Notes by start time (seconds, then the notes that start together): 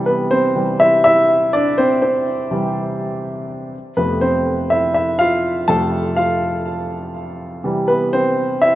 Already playing: C3 E3 G3
0.06 B3 B4
0.31 C4 C5
0.55 C3 E3 G3
0.80 E4 E5
1.04 E4 E5
1.53 D4 D5
1.78 C4 C5
2.02 C4 C5
2.51 C3 E3 G3
3.97 F2 C3 A3 B3 B4
4.21 C4 C5
4.70 E4 E5
4.94 E4 E5
5.19 F4 F5
5.68 F2 C3 A3 A4 A5
6.16 F4 F5
7.64 C3 E3 G3
7.88 B3 B4
8.13 C4 C5
8.62 E4 E5